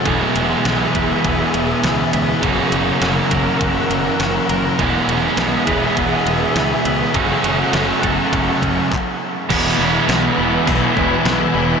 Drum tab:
CC |--------|--------|--------|--------|
RD |xxxxxxxx|xxxxxxxx|xxxxxxxx|xxxxxx--|
HH |--------|--------|--------|--------|
CP |--------|--------|--------|------x-|
SD |--o---o-|--o---o-|--o---o-|--o-----|
BD |o--oo---|o--oo---|o--oo---|o--oooo-|

CC |x-------|
RD |--------|
HH |o-o-o-o-|
CP |--------|
SD |--o---o-|
BD |o---oo--|